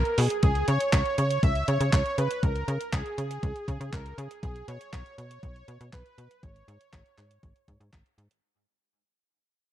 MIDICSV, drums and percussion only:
0, 0, Header, 1, 2, 480
1, 0, Start_track
1, 0, Tempo, 500000
1, 413, Time_signature, 4, 2, 24, 8
1, 9340, End_track
2, 0, Start_track
2, 0, Title_t, "Drums"
2, 50, Note_on_c, 9, 42, 35
2, 146, Note_off_c, 9, 42, 0
2, 171, Note_on_c, 9, 46, 99
2, 267, Note_off_c, 9, 46, 0
2, 291, Note_on_c, 9, 42, 48
2, 387, Note_off_c, 9, 42, 0
2, 410, Note_on_c, 9, 42, 76
2, 413, Note_on_c, 9, 36, 117
2, 506, Note_off_c, 9, 42, 0
2, 509, Note_off_c, 9, 36, 0
2, 530, Note_on_c, 9, 42, 34
2, 626, Note_off_c, 9, 42, 0
2, 650, Note_on_c, 9, 42, 73
2, 746, Note_off_c, 9, 42, 0
2, 772, Note_on_c, 9, 42, 49
2, 868, Note_off_c, 9, 42, 0
2, 892, Note_on_c, 9, 39, 114
2, 892, Note_on_c, 9, 42, 75
2, 893, Note_on_c, 9, 36, 115
2, 988, Note_off_c, 9, 39, 0
2, 988, Note_off_c, 9, 42, 0
2, 989, Note_off_c, 9, 36, 0
2, 1012, Note_on_c, 9, 42, 33
2, 1108, Note_off_c, 9, 42, 0
2, 1133, Note_on_c, 9, 42, 72
2, 1229, Note_off_c, 9, 42, 0
2, 1253, Note_on_c, 9, 42, 50
2, 1349, Note_off_c, 9, 42, 0
2, 1373, Note_on_c, 9, 36, 111
2, 1374, Note_on_c, 9, 42, 75
2, 1469, Note_off_c, 9, 36, 0
2, 1470, Note_off_c, 9, 42, 0
2, 1492, Note_on_c, 9, 42, 33
2, 1588, Note_off_c, 9, 42, 0
2, 1613, Note_on_c, 9, 42, 75
2, 1709, Note_off_c, 9, 42, 0
2, 1734, Note_on_c, 9, 42, 53
2, 1830, Note_off_c, 9, 42, 0
2, 1853, Note_on_c, 9, 36, 111
2, 1854, Note_on_c, 9, 39, 115
2, 1854, Note_on_c, 9, 42, 71
2, 1949, Note_off_c, 9, 36, 0
2, 1950, Note_off_c, 9, 39, 0
2, 1950, Note_off_c, 9, 42, 0
2, 1974, Note_on_c, 9, 42, 36
2, 2070, Note_off_c, 9, 42, 0
2, 2094, Note_on_c, 9, 42, 73
2, 2190, Note_off_c, 9, 42, 0
2, 2214, Note_on_c, 9, 42, 48
2, 2310, Note_off_c, 9, 42, 0
2, 2333, Note_on_c, 9, 36, 110
2, 2333, Note_on_c, 9, 42, 78
2, 2429, Note_off_c, 9, 36, 0
2, 2429, Note_off_c, 9, 42, 0
2, 2454, Note_on_c, 9, 42, 36
2, 2550, Note_off_c, 9, 42, 0
2, 2574, Note_on_c, 9, 42, 74
2, 2670, Note_off_c, 9, 42, 0
2, 2694, Note_on_c, 9, 42, 50
2, 2790, Note_off_c, 9, 42, 0
2, 2814, Note_on_c, 9, 36, 115
2, 2814, Note_on_c, 9, 39, 114
2, 2814, Note_on_c, 9, 42, 72
2, 2910, Note_off_c, 9, 36, 0
2, 2910, Note_off_c, 9, 39, 0
2, 2910, Note_off_c, 9, 42, 0
2, 2936, Note_on_c, 9, 42, 34
2, 3032, Note_off_c, 9, 42, 0
2, 3055, Note_on_c, 9, 42, 73
2, 3151, Note_off_c, 9, 42, 0
2, 3176, Note_on_c, 9, 42, 50
2, 3272, Note_off_c, 9, 42, 0
2, 3294, Note_on_c, 9, 36, 106
2, 3295, Note_on_c, 9, 42, 75
2, 3390, Note_off_c, 9, 36, 0
2, 3391, Note_off_c, 9, 42, 0
2, 3415, Note_on_c, 9, 42, 35
2, 3511, Note_off_c, 9, 42, 0
2, 3534, Note_on_c, 9, 36, 60
2, 3536, Note_on_c, 9, 42, 74
2, 3630, Note_off_c, 9, 36, 0
2, 3632, Note_off_c, 9, 42, 0
2, 3656, Note_on_c, 9, 42, 56
2, 3752, Note_off_c, 9, 42, 0
2, 3773, Note_on_c, 9, 36, 102
2, 3775, Note_on_c, 9, 39, 107
2, 3775, Note_on_c, 9, 42, 72
2, 3869, Note_off_c, 9, 36, 0
2, 3871, Note_off_c, 9, 39, 0
2, 3871, Note_off_c, 9, 42, 0
2, 3896, Note_on_c, 9, 42, 35
2, 3992, Note_off_c, 9, 42, 0
2, 4016, Note_on_c, 9, 42, 72
2, 4112, Note_off_c, 9, 42, 0
2, 4136, Note_on_c, 9, 42, 50
2, 4232, Note_off_c, 9, 42, 0
2, 4254, Note_on_c, 9, 36, 103
2, 4255, Note_on_c, 9, 42, 82
2, 4350, Note_off_c, 9, 36, 0
2, 4351, Note_off_c, 9, 42, 0
2, 4375, Note_on_c, 9, 42, 35
2, 4471, Note_off_c, 9, 42, 0
2, 4495, Note_on_c, 9, 42, 78
2, 4591, Note_off_c, 9, 42, 0
2, 4616, Note_on_c, 9, 42, 53
2, 4712, Note_off_c, 9, 42, 0
2, 4734, Note_on_c, 9, 36, 111
2, 4736, Note_on_c, 9, 39, 112
2, 4736, Note_on_c, 9, 42, 77
2, 4830, Note_off_c, 9, 36, 0
2, 4832, Note_off_c, 9, 39, 0
2, 4832, Note_off_c, 9, 42, 0
2, 4857, Note_on_c, 9, 42, 36
2, 4953, Note_off_c, 9, 42, 0
2, 4977, Note_on_c, 9, 42, 74
2, 5073, Note_off_c, 9, 42, 0
2, 5096, Note_on_c, 9, 42, 53
2, 5192, Note_off_c, 9, 42, 0
2, 5214, Note_on_c, 9, 36, 103
2, 5217, Note_on_c, 9, 42, 79
2, 5310, Note_off_c, 9, 36, 0
2, 5313, Note_off_c, 9, 42, 0
2, 5337, Note_on_c, 9, 42, 34
2, 5433, Note_off_c, 9, 42, 0
2, 5455, Note_on_c, 9, 42, 77
2, 5551, Note_off_c, 9, 42, 0
2, 5575, Note_on_c, 9, 42, 53
2, 5671, Note_off_c, 9, 42, 0
2, 5694, Note_on_c, 9, 36, 103
2, 5694, Note_on_c, 9, 39, 105
2, 5694, Note_on_c, 9, 42, 78
2, 5790, Note_off_c, 9, 36, 0
2, 5790, Note_off_c, 9, 39, 0
2, 5790, Note_off_c, 9, 42, 0
2, 5815, Note_on_c, 9, 42, 37
2, 5911, Note_off_c, 9, 42, 0
2, 5935, Note_on_c, 9, 42, 77
2, 6031, Note_off_c, 9, 42, 0
2, 6056, Note_on_c, 9, 42, 49
2, 6152, Note_off_c, 9, 42, 0
2, 6174, Note_on_c, 9, 36, 111
2, 6177, Note_on_c, 9, 42, 82
2, 6270, Note_off_c, 9, 36, 0
2, 6273, Note_off_c, 9, 42, 0
2, 6297, Note_on_c, 9, 42, 37
2, 6393, Note_off_c, 9, 42, 0
2, 6416, Note_on_c, 9, 42, 79
2, 6512, Note_off_c, 9, 42, 0
2, 6535, Note_on_c, 9, 42, 56
2, 6631, Note_off_c, 9, 42, 0
2, 6654, Note_on_c, 9, 36, 110
2, 6655, Note_on_c, 9, 39, 109
2, 6655, Note_on_c, 9, 42, 78
2, 6750, Note_off_c, 9, 36, 0
2, 6751, Note_off_c, 9, 39, 0
2, 6751, Note_off_c, 9, 42, 0
2, 6775, Note_on_c, 9, 42, 36
2, 6871, Note_off_c, 9, 42, 0
2, 6894, Note_on_c, 9, 39, 57
2, 6894, Note_on_c, 9, 42, 77
2, 6990, Note_off_c, 9, 39, 0
2, 6990, Note_off_c, 9, 42, 0
2, 7016, Note_on_c, 9, 42, 54
2, 7112, Note_off_c, 9, 42, 0
2, 7134, Note_on_c, 9, 36, 106
2, 7135, Note_on_c, 9, 42, 77
2, 7230, Note_off_c, 9, 36, 0
2, 7231, Note_off_c, 9, 42, 0
2, 7255, Note_on_c, 9, 42, 37
2, 7351, Note_off_c, 9, 42, 0
2, 7374, Note_on_c, 9, 36, 58
2, 7375, Note_on_c, 9, 42, 75
2, 7470, Note_off_c, 9, 36, 0
2, 7471, Note_off_c, 9, 42, 0
2, 7496, Note_on_c, 9, 42, 55
2, 7592, Note_off_c, 9, 42, 0
2, 7613, Note_on_c, 9, 36, 101
2, 7615, Note_on_c, 9, 39, 105
2, 7615, Note_on_c, 9, 42, 76
2, 7709, Note_off_c, 9, 36, 0
2, 7711, Note_off_c, 9, 39, 0
2, 7711, Note_off_c, 9, 42, 0
2, 7737, Note_on_c, 9, 42, 38
2, 7833, Note_off_c, 9, 42, 0
2, 7856, Note_on_c, 9, 42, 80
2, 7952, Note_off_c, 9, 42, 0
2, 7977, Note_on_c, 9, 42, 52
2, 8073, Note_off_c, 9, 42, 0
2, 9340, End_track
0, 0, End_of_file